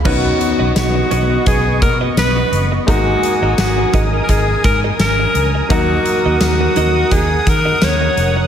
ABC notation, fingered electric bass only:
X:1
M:4/4
L:1/16
Q:"Swing 16ths" 1/4=85
K:Blyd
V:1 name="Fingered electric bass" clef=bass
B,,,2 z B,,, B,,,2 B,,,2 B,,,2 B,,2 B,,,2 F,,,2 | G,,,2 z G,,, G,,,2 G,,,2 G,,,2 G,,2 G,,,2 C,,2 | D,,2 z D,, D,,2 D,,2 D,,2 D,2 D,,2 E,,,2 |]